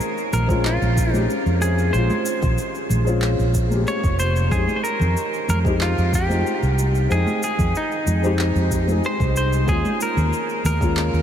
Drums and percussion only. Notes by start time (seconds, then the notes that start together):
0.01 cabasa
0.18 cabasa
0.33 high conga, low conga, cabasa
0.49 kick, cabasa
0.65 clap, cabasa
0.82 cabasa
0.97 kick, cabasa
1.14 high conga, cabasa
1.30 cabasa
1.46 cabasa
1.62 cabasa
1.79 cabasa
1.94 cabasa
2.10 high conga, cabasa
2.26 cabasa
2.42 kick, low conga, cabasa
2.58 cabasa
2.75 cabasa
2.90 high conga, low conga, cabasa
3.07 cabasa
3.22 clap, cabasa
3.39 cabasa
3.54 kick, cabasa
3.71 high conga, cabasa
3.87 cabasa
4.04 kick, cabasa
4.19 cabasa
4.36 cabasa
4.51 kick, cabasa
4.68 high conga, cabasa
4.85 cabasa
5.00 low conga, cabasa
5.17 cabasa
5.34 cabasa
5.48 high conga, low conga, cabasa
5.65 kick, cabasa
5.81 clap, cabasa
5.98 cabasa
6.13 kick, cabasa
6.30 high conga, cabasa
6.47 cabasa
6.63 cabasa
6.79 cabasa
6.95 cabasa
7.11 cabasa
7.27 high conga, cabasa
7.43 cabasa
7.58 kick, low conga, cabasa
7.75 cabasa
7.92 cabasa
8.06 high conga, low conga, cabasa
8.24 cabasa
8.39 clap, cabasa
8.56 cabasa
8.71 kick, cabasa
8.88 high conga, cabasa
9.04 cabasa
9.20 kick, cabasa
9.36 cabasa
9.53 cabasa
9.68 kick, cabasa
9.85 high conga, cabasa
10.01 cabasa
10.17 low conga, cabasa
10.33 cabasa
10.49 cabasa
10.65 high conga, low conga, cabasa
10.81 kick, cabasa
10.97 clap, cabasa
11.14 cabasa